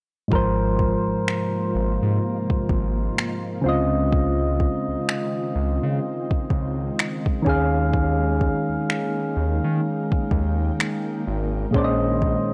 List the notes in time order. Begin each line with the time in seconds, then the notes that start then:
0.28 G#1 G#2 C3 F3 G#3 A#3 D#4 F4, kick
0.33 A#4 C5
0.79 kick
1.07 G#1
1.28 finger snap
1.75 G#1
2.02 G#2
2.50 kick
2.69 G#1, kick
3.18 finger snap
3.62 C#2 C#3 D#3 C4
3.66 F4 D#5
4.13 kick
4.60 kick
4.88 C#2
5.09 finger snap
5.56 C#2
5.83 C#3
6.31 kick
6.50 C#2, kick
6.99 finger snap
7.26 kick
7.42 D#3 A#3 C#4, kick
7.46 D#2 G#4 F5
7.94 kick
8.41 kick
8.69 D#2
8.90 finger snap
9.36 D#2 G5
9.64 D#3
10.12 kick
10.31 D#2, kick
10.80 finger snap
11.27 G#1
11.71 A#1 A#2 G#3 C#4, kick
11.75 G#3 C5 D5
11.84 D#5
12.22 kick
12.50 A#1